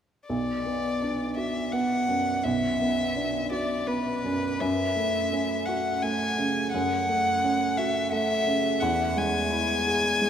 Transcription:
0.29 2.41 B1 soft
0.29 1.34 D5 medium
0.66 1.24 B3 soft
1.02 1.59 D4 soft
1.37 1.95 F#4 soft
1.37 1.74 E5 medium
1.72 2.30 B3 soft
1.72 2.45 F#5 medium
2.08 2.66 F#2 soft
2.44 4.56 B1 soft
2.44 3.51 E5 medium
2.81 3.38 B3 soft
3.16 3.73 D4 soft
3.51 4.09 F#4 soft
3.51 3.89 D5 medium
3.87 4.46 B3 soft
3.87 4.62 B4 medium
4.24 4.59 F#2 soft
4.60 6.68 F#2 medium
4.60 5.67 E5 medium
4.96 5.53 A3 soft
5.33 5.89 C#4 soft
5.66 6.24 F#4 soft
5.66 6.04 F#5 medium
6.02 6.59 A3 soft
6.02 6.72 G#5 medium
6.38 6.94 C#3 soft
6.73 8.78 F#2 medium
6.73 7.79 F#5 medium
7.09 7.64 A3 soft
7.44 7.99 C#4 soft
7.77 8.34 F#4 soft
7.77 8.11 E5 medium
8.12 8.67 A3 soft
8.12 8.82 E5 medium
8.47 8.81 C#3 soft
8.80 10.30 E2 medium
8.80 9.19 F#5 medium
9.17 9.72 G#3 soft
9.17 10.30 G#5 medium
9.51 10.07 E4 soft
9.87 10.30 G#4 soft
10.21 10.30 G#3 soft

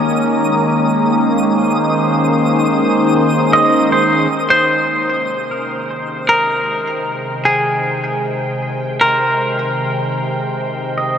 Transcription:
0.00 11.18 D#3 medium
0.00 4.32 G#3 medium
0.00 4.40 G#3 medium
0.00 5.62 A#3 medium
0.00 4.31 C#4 medium
0.00 4.40 G4 medium
0.00 4.34 D#6 medium
0.82 11.18 C5 medium
3.53 3.90 D#5 loud
3.92 5.54 C5 medium
4.50 6.71 C5 medium
4.78 11.18 C3 medium
5.21 11.18 G#3 medium
5.51 5.91 A#4 medium
5.51 11.18 G5 medium
5.91 6.27 C5 medium
6.28 8.47 A#4 medium
6.28 7.02 D#5 medium
7.45 9.64 G#4 soft
7.45 9.05 G5 medium
9.01 11.18 A#4 soft
9.01 10.13 C5 medium
10.98 11.18 D#5 loud

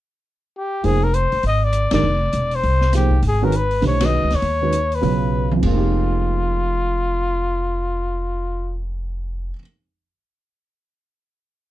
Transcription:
0.57 0.87 G4 medium
0.83 1.29 F1 medium
0.83 1.00 F3 medium
0.83 1.00 A#3 medium
0.83 1.01 D#4 soft
0.83 1.01 G#4 soft
0.83 1.05 G#4 medium
0.83 1.01 C5 medium
0.83 open hi-hat soft
1.04 1.16 A#4 medium
1.14 1.44 C5 medium
1.14 closed hi-hat soft
1.32 1.43 F#1 medium
1.32 open hi-hat soft
1.43 1.88 G#1 medium
1.43 1.66 D#5 medium
1.43 open hi-hat soft
1.64 1.93 D5 medium
1.73 cross-stick medium
1.73 closed hi-hat soft
1.91 2.03 G1 medium
1.91 2.02 D#3 medium
1.91 2.02 G#3 medium
1.91 2.03 D4 medium
1.91 2.03 G4 medium
1.91 2.03 A#4 medium
1.91 2.57 D5 medium
1.91 snare medium
1.91 ride medium
2.03 2.31 F1 medium
2.33 2.61 E1 medium
2.33 closed hi-hat soft
2.51 2.95 C5 medium
2.51 open hi-hat soft
2.63 3.20 C2 medium
2.63 open hi-hat soft
2.81 snare soft
2.93 3.10 F3 medium
2.93 3.10 A#3 soft
2.93 3.10 D#4 soft
2.93 3.23 G4 medium
2.93 3.11 G#4 soft
2.93 3.11 C5 medium
2.93 cross-stick medium
2.93 snare soft
2.93 closed hi-hat soft
3.11 kick soft
3.23 3.80 G#1 medium
3.23 open hi-hat soft
3.27 3.46 G#4 medium
3.42 3.52 D#3 medium
3.42 3.52 G#3 medium
3.42 3.52 C#4 medium
3.42 3.53 F#4 medium
3.42 3.58 A#4 medium
3.42 3.53 B4 medium
3.52 closed hi-hat soft
3.56 3.85 B4 medium
3.71 open hi-hat soft
3.82 4.20 B1 medium
3.82 3.99 E3 soft
3.82 3.99 A3 soft
3.82 3.99 D4 soft
3.82 3.99 G4 soft
3.82 4.00 C5 medium
3.82 snare soft
3.82 open hi-hat soft
3.87 4.07 C#5 medium
4.00 4.27 D#3 soft
4.00 4.27 G#3 soft
4.00 4.27 C#4 soft
4.00 4.28 F#4 soft
4.00 4.28 B4 medium
4.00 snare medium
4.00 ride medium
4.05 4.37 D#5 medium
4.23 4.32 C#2 medium
4.31 4.42 D#2 medium
4.31 snare soft
4.31 open hi-hat soft
4.35 4.96 C#5 medium
4.42 5.00 D#2 medium
4.42 open hi-hat soft
4.61 4.72 D#3 soft
4.61 4.72 G#3 soft
4.61 4.72 C#4 medium
4.61 4.73 F#4 soft
4.61 4.72 B4 medium
4.72 closed hi-hat soft
4.92 5.53 B4 medium
4.92 open hi-hat soft
5.01 5.60 B1 medium
5.01 5.47 C#3 medium
5.01 5.47 F#3 medium
5.01 5.47 B3 medium
5.01 5.48 F4 medium
5.01 5.48 B4 medium
5.01 open hi-hat soft
5.51 9.49 F2 medium
5.51 high tom medium
5.57 9.51 F3 medium
5.63 9.50 F1 medium
5.63 9.54 G#3 medium
5.63 8.81 F4 medium
5.63 kick soft
5.63 crash soft
5.67 9.56 A#3 medium
5.72 9.59 D#4 medium
5.77 9.61 G4 medium

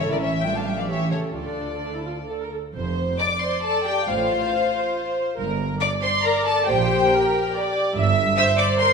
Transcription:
0.00 1.32 A1 medium
0.00 0.12 C#3 medium
0.00 0.41 C#4 medium
0.00 0.41 E4 medium
0.00 0.12 A4 medium
0.00 0.12 C#5 loud
0.12 0.23 D3 medium
0.12 0.23 A#4 medium
0.12 0.16 D5 medium
0.22 0.45 E3 medium
0.22 0.31 C#5 medium
0.22 0.44 E5 loud
0.43 0.55 G3 medium
0.43 0.90 D4 medium
0.43 0.90 F4 medium
0.43 0.56 E5 medium
0.43 0.55 G5 medium
0.55 0.67 A3 medium
0.55 0.67 F5 medium
0.55 0.67 A5 medium
0.66 0.78 G3 medium
0.66 0.78 E5 medium
0.66 0.78 G5 medium
0.77 0.89 F3 medium
0.77 0.90 D5 medium
0.77 0.90 F5 medium
0.88 1.12 E3 medium
0.88 1.36 C#4 medium
0.88 1.35 G4 medium
0.88 1.12 C#5 medium
0.88 1.12 E5 medium
1.11 1.36 C#3 medium
1.11 1.34 A4 medium
1.11 1.19 C#5 medium
1.34 2.51 D2 medium
1.34 2.26 D3 medium
1.34 1.76 D4 medium
1.34 1.77 F4 medium
1.34 2.26 A4 medium
1.34 2.26 D5 medium
1.82 1.93 D4 medium
1.95 2.06 E4 medium
2.05 2.13 F4 medium
2.28 2.40 A4 medium
2.42 2.52 A#4 medium
2.51 2.59 A4 medium
2.74 3.11 F1 medium
2.74 3.11 F2 medium
2.74 3.16 C5 medium
3.18 4.07 D5 loud
3.18 3.27 D5 loud
3.18 3.39 D6 loud
3.41 3.63 C5 medium
3.41 3.63 C6 loud
3.63 3.85 A4 loud
3.63 3.85 A5 loud
3.85 4.08 G4 medium
3.85 4.07 G5 loud
4.07 4.44 A1 medium
4.07 4.44 A2 medium
4.07 5.14 F4 medium
4.07 5.35 C5 loud
4.07 5.16 F5 loud
5.37 5.74 G1 loud
5.37 5.74 G2 loud
5.37 5.81 A#4 loud
5.81 5.89 D5 loud
5.81 6.67 D5 loud
5.81 5.89 D6 loud
6.02 6.10 C5 loud
6.02 6.24 C6 loud
6.24 6.46 A#4 loud
6.24 6.47 A#5 loud
6.46 6.68 A4 loud
6.46 6.67 A5 loud
6.67 7.04 A#1 loud
6.67 7.04 A#2 loud
6.67 7.72 G4 loud
6.67 7.11 C5 loud
6.67 7.73 G5 loud
7.12 7.54 A#4 loud
7.54 7.96 D5 loud
7.95 8.31 G1 loud
7.95 8.31 G2 loud
7.95 8.38 E5 loud
8.37 8.80 C5 loud
8.37 8.57 E5 loud
8.37 8.45 E6 loud
8.58 8.80 D5 loud
8.58 8.66 D6 loud
8.79 8.93 A#4 loud
8.79 8.93 C5 loud
8.79 8.93 C6 loud

